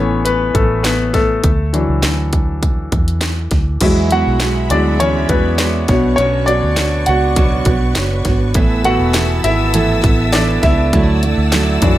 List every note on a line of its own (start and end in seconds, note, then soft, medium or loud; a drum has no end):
0.00 0.51 A1 medium
0.00 0.80 E3 soft
0.00 0.54 A3 soft
0.00 0.26 B3 medium
0.00 0.22 C#4 medium
0.00 0.25 B4 medium
0.00 0.27 C#5 medium
0.25 0.53 B3 medium
0.25 0.56 B4 medium
0.25 closed hi-hat medium
0.54 1.40 A1 medium
0.54 0.83 A3 medium
0.54 0.85 A4 medium
0.54 kick medium
0.54 closed hi-hat medium
0.83 1.12 B3 medium
0.83 1.14 B4 medium
0.83 snare medium
0.83 clap medium
0.83 closed hi-hat medium
1.13 3.48 A3 medium
1.13 3.47 A4 medium
1.13 kick medium
1.13 snare soft
1.13 closed hi-hat medium
1.44 1.85 D2 medium
1.44 kick medium
1.44 closed hi-hat medium
1.73 2.13 E3 soft
1.73 2.13 F#3 soft
1.73 2.13 D4 medium
1.73 closed hi-hat medium
1.88 2.02 C#2 medium
2.03 2.88 D2 medium
2.03 snare medium
2.03 clap medium
2.03 closed hi-hat medium
2.33 kick medium
2.33 closed hi-hat medium
2.63 kick medium
2.63 closed hi-hat medium
2.92 3.48 E2 medium
2.92 kick medium
2.92 closed hi-hat soft
3.08 closed hi-hat soft
3.21 snare loud
3.21 clap medium
3.21 closed hi-hat medium
3.51 3.79 D2 medium
3.51 kick medium
3.51 snare soft
3.51 closed hi-hat medium
3.81 4.11 E2 medium
3.81 4.23 E2 loud
3.81 4.11 E3 medium
3.81 4.21 F#3 soft
3.81 4.11 G#3 medium
3.81 4.21 G#3 soft
3.81 4.11 B3 medium
3.81 4.21 E4 medium
3.81 4.09 E4 medium
3.81 4.10 F#4 medium
3.81 5.88 G#4 medium
3.81 5.88 E5 medium
3.81 8.53 F#5 medium
3.81 5.88 B5 medium
3.81 kick loud
3.81 closed hi-hat medium
3.81 crash medium
4.11 4.38 G#3 soft
4.11 4.40 B3 soft
4.11 4.41 E4 medium
4.11 4.41 F#4 medium
4.11 4.67 F#4 medium
4.11 4.73 F#5 medium
4.11 closed hi-hat medium
4.27 4.68 B1 medium
4.40 4.70 G#3 medium
4.40 4.70 B3 medium
4.40 4.69 E4 medium
4.40 4.70 F#4 medium
4.40 snare medium
4.40 clap medium
4.40 closed hi-hat medium
4.70 5.26 D2 medium
4.70 4.97 F#3 soft
4.70 4.97 G#3 soft
4.70 4.99 G#3 soft
4.70 5.00 B3 soft
4.70 4.99 D4 medium
4.70 5.00 E4 soft
4.70 4.97 E4 soft
4.70 5.00 F#4 soft
4.70 5.01 D5 medium
4.70 closed hi-hat medium
4.99 5.29 E2 medium
4.99 5.30 E3 medium
4.99 5.30 G#3 medium
4.99 5.30 B3 medium
4.99 5.28 C#4 medium
4.99 5.29 E4 medium
4.99 5.30 F#4 medium
4.99 5.30 C#5 medium
4.99 closed hi-hat medium
5.29 5.85 E2 medium
5.29 5.57 G#3 soft
5.29 5.87 B3 medium
5.29 5.59 B3 soft
5.29 5.59 E4 medium
5.29 5.60 F#4 soft
5.29 6.21 B4 medium
5.29 kick medium
5.29 closed hi-hat medium
5.58 5.89 G#3 medium
5.58 5.89 B3 medium
5.58 5.89 E4 medium
5.58 5.89 F#4 medium
5.58 snare loud
5.58 clap medium
5.58 closed hi-hat medium
5.88 6.17 B1 medium
5.88 8.22 B2 medium
5.88 8.22 B3 soft
5.88 6.19 B3 soft
5.88 8.53 D4 medium
5.88 6.19 D4 soft
5.88 6.19 F#4 soft
5.88 10.89 B4 medium
5.88 6.19 C#5 medium
5.88 6.14 C#5 medium
5.88 8.54 C#6 medium
5.88 kick loud
5.88 snare soft
5.88 closed hi-hat medium
6.16 6.60 B1 loud
6.16 6.48 B2 medium
6.16 6.49 F#3 medium
6.16 6.49 B3 medium
6.16 6.46 C#4 medium
6.16 6.48 C#5 medium
6.16 closed hi-hat medium
6.20 6.48 D4 medium
6.20 6.47 F#4 medium
6.20 6.46 C#5 medium
6.46 6.75 B3 soft
6.46 7.04 D4 medium
6.46 6.76 D4 medium
6.46 6.77 F#4 medium
6.46 6.77 C#5 medium
6.46 7.08 D5 medium
6.46 closed hi-hat medium
6.63 7.04 D2 medium
6.76 7.07 B3 medium
6.76 7.07 D4 medium
6.76 7.07 F#4 medium
6.76 7.06 C#5 medium
6.76 snare medium
6.76 clap medium
6.76 closed hi-hat medium
7.06 7.63 C#2 medium
7.06 7.36 B3 soft
7.06 7.37 D4 soft
7.06 7.37 F#4 soft
7.06 8.23 F#4 medium
7.06 7.37 C#5 soft
7.06 8.22 F#5 medium
7.06 closed hi-hat medium
7.36 7.67 B2 medium
7.36 7.67 F#3 medium
7.36 7.67 B3 medium
7.36 7.67 D4 medium
7.36 7.66 F#4 medium
7.36 7.65 C#5 medium
7.36 kick medium
7.36 closed hi-hat medium
7.65 7.94 B1 medium
7.65 7.95 B3 soft
7.65 7.95 D4 soft
7.65 7.97 F#4 soft
7.65 7.96 C#5 medium
7.65 kick medium
7.65 closed hi-hat medium
7.95 8.24 F#1 medium
7.95 8.26 B3 medium
7.95 8.26 D4 medium
7.95 8.25 F#4 medium
7.95 8.24 C#5 medium
7.95 snare loud
7.95 clap medium
7.95 closed hi-hat medium
8.25 8.53 G#1 medium
8.25 8.55 B3 soft
8.25 8.56 D4 medium
8.25 8.56 F#4 soft
8.25 8.56 C#5 medium
8.25 kick medium
8.25 snare soft
8.25 closed hi-hat medium
8.54 8.97 A1 loud
8.54 8.85 A2 medium
8.54 8.85 E3 medium
8.54 8.86 B3 medium
8.54 8.85 E4 medium
8.54 8.83 A4 medium
8.54 10.90 E5 medium
8.54 10.90 A5 medium
8.54 10.90 E6 medium
8.54 kick loud
8.54 closed hi-hat medium
8.84 10.88 E3 soft
8.84 10.89 A3 soft
8.84 10.89 B3 medium
8.84 9.15 B3 medium
8.84 9.15 E4 medium
8.84 9.41 F#4 medium
8.84 9.15 A4 medium
8.84 9.41 F#5 loud
8.84 closed hi-hat medium
9.00 9.41 E1 medium
9.14 9.45 E3 medium
9.14 9.45 B3 medium
9.14 9.45 E4 medium
9.14 9.43 A4 medium
9.14 snare loud
9.14 clap medium
9.14 closed hi-hat medium
9.44 10.00 G#1 medium
9.44 9.74 B3 soft
9.44 10.23 E4 medium
9.44 9.74 E4 soft
9.44 9.74 A4 soft
9.44 10.22 E5 loud
9.44 closed hi-hat medium
9.74 10.04 A2 medium
9.74 10.04 E3 medium
9.74 10.04 B3 medium
9.74 10.04 E4 medium
9.74 10.02 A4 medium
9.74 closed hi-hat medium
10.03 10.59 A1 medium
10.03 10.33 B3 soft
10.03 10.34 E4 medium
10.03 10.33 A4 medium
10.03 kick loud
10.03 clap medium
10.03 closed hi-hat medium
10.24 10.33 E5 medium
10.33 10.63 E3 medium
10.33 10.64 B3 medium
10.33 10.61 D4 medium
10.33 10.64 E4 medium
10.33 10.62 A4 medium
10.33 10.61 D5 medium
10.33 snare loud
10.33 clap medium
10.33 closed hi-hat medium
10.63 10.91 C#2 medium
10.63 10.94 B3 soft
10.63 11.98 E4 medium
10.63 10.94 E4 soft
10.63 10.93 A4 medium
10.63 11.98 E5 medium
10.63 kick medium
10.63 snare soft
10.63 closed hi-hat medium
10.93 11.34 D2 loud
10.93 11.23 D3 medium
10.93 11.23 F#3 medium
10.93 11.24 A3 medium
10.93 11.24 D4 medium
10.93 11.22 E4 medium
10.93 11.98 D5 medium
10.93 11.98 F#5 medium
10.93 11.98 A5 medium
10.93 11.98 E6 medium
10.93 kick loud
10.93 closed hi-hat medium
11.23 11.53 A3 soft
11.23 11.53 D4 medium
11.23 11.53 E4 medium
11.23 closed hi-hat medium
11.38 11.79 D2 medium
11.52 11.82 F#3 medium
11.52 11.83 A3 medium
11.52 11.83 D4 medium
11.52 11.81 E4 medium
11.52 snare loud
11.52 clap medium
11.52 closed hi-hat medium
11.82 11.98 F#2 medium
11.82 11.98 E3 soft
11.82 11.98 F#3 soft
11.82 11.98 A3 soft
11.82 11.98 D4 medium
11.82 kick medium
11.82 closed hi-hat medium